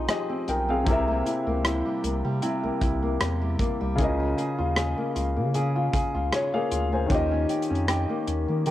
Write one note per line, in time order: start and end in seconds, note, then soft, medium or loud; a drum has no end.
0.00 0.81 F3 medium
0.00 0.95 F3 medium
0.00 0.29 C4 medium
0.00 0.82 C4 medium
0.00 0.46 D#4 medium
0.08 0.47 G4 medium
0.08 0.95 G#4 medium
0.08 0.46 D#5 medium
0.08 cross-stick loud
0.08 closed hi-hat medium
0.29 0.68 C4 medium
0.47 0.84 B1 medium
0.47 0.87 D#4 medium
0.47 0.69 A#4 medium
0.47 0.68 G5 medium
0.47 closed hi-hat medium
0.68 1.07 C4 medium
0.68 1.07 G#4 medium
0.68 1.07 F5 medium
0.84 1.23 C2 loud
0.84 3.93 C3 medium
0.84 2.41 C3 medium
0.84 3.94 C4 medium
0.84 1.24 E4 medium
0.84 3.95 G4 medium
0.84 kick loud
0.84 closed hi-hat medium
0.90 3.96 A#4 medium
0.90 3.97 E5 medium
1.08 1.46 A#3 medium
1.25 1.63 E4 medium
1.25 closed hi-hat medium
1.47 1.83 C#2 medium
1.47 2.03 A#3 medium
1.64 2.42 E4 medium
1.64 cross-stick loud
1.64 closed hi-hat medium
1.85 2.23 G3 medium
2.03 2.23 C2 medium
2.03 2.63 A#3 medium
2.03 closed hi-hat medium
2.25 2.41 C3 loud
2.25 3.40 G3 medium
2.42 3.98 C3 medium
2.42 2.80 E4 medium
2.42 closed hi-hat medium
2.64 2.71 C2 soft
2.64 3.02 A#3 medium
2.81 3.18 C2 medium
2.81 3.19 E4 medium
2.81 kick medium
2.81 closed hi-hat medium
3.02 3.59 A#3 medium
3.20 3.57 E2 medium
3.20 4.07 E4 medium
3.20 cross-stick loud
3.20 closed hi-hat medium
3.41 3.79 G3 medium
3.59 4.40 A#3 medium
3.59 kick medium
3.59 closed hi-hat medium
3.81 3.97 C2 medium
3.81 4.07 G3 medium
3.96 4.34 C#2 loud
3.96 7.05 C#3 medium
3.96 5.53 C#3 medium
3.96 7.06 C#4 medium
3.96 4.36 G#4 medium
3.96 kick loud
3.96 closed hi-hat medium
4.00 4.06 E4 medium
4.00 6.30 A#4 medium
4.04 6.32 F4 medium
4.04 6.31 D#5 medium
4.20 4.57 F4 medium
4.37 4.75 G#4 medium
4.37 closed hi-hat medium
4.58 4.95 D#2 medium
4.58 5.14 F4 medium
4.76 5.54 G#4 medium
4.76 cross-stick loud
4.76 closed hi-hat medium
4.97 5.36 A#3 medium
5.15 5.38 C#2 loud
5.15 5.75 F4 medium
5.15 closed hi-hat medium
5.36 5.90 C#3 medium
5.36 6.53 A#3 medium
5.54 7.19 C#3 medium
5.54 5.92 G#4 medium
5.54 closed hi-hat medium
5.76 6.13 F4 medium
5.93 6.02 C#2 soft
5.93 6.31 G#4 medium
5.93 kick medium
5.93 closed hi-hat medium
6.15 6.31 C#2 medium
6.15 6.70 F4 medium
6.33 6.53 F4 medium
6.33 7.10 G#4 medium
6.33 6.53 C#5 medium
6.33 cross-stick loud
6.33 closed hi-hat medium
6.54 6.92 A#3 medium
6.54 6.91 G#4 medium
6.54 6.91 F5 medium
6.71 7.07 D2 medium
6.71 7.19 F4 medium
6.71 closed hi-hat medium
6.92 8.09 A#3 medium
6.92 7.30 C5 medium
6.92 7.30 G#5 medium
7.06 8.71 D#3 medium
7.06 8.71 C#4 medium
7.06 kick loud
7.06 closed hi-hat medium
7.10 7.46 D#2 loud
7.10 8.65 D#3 medium
7.10 8.71 F4 medium
7.10 7.48 G4 medium
7.10 8.71 G4 medium
7.15 8.71 D#5 medium
7.32 7.70 C#4 medium
7.49 7.87 G4 medium
7.49 closed hi-hat medium
7.62 closed hi-hat soft
7.70 8.06 F2 loud
7.70 8.27 C#4 medium
7.75 closed hi-hat soft
7.88 8.66 G4 medium
7.88 cross-stick loud
7.88 closed hi-hat medium
8.09 8.48 A#3 medium
8.27 8.47 D#2 medium
8.27 8.71 C#4 medium
8.27 closed hi-hat medium
8.48 8.65 D#3 loud
8.48 8.71 A#3 medium
8.66 8.71 D#3 medium
8.66 8.71 D#3 loud
8.66 8.71 G4 medium
8.66 closed hi-hat medium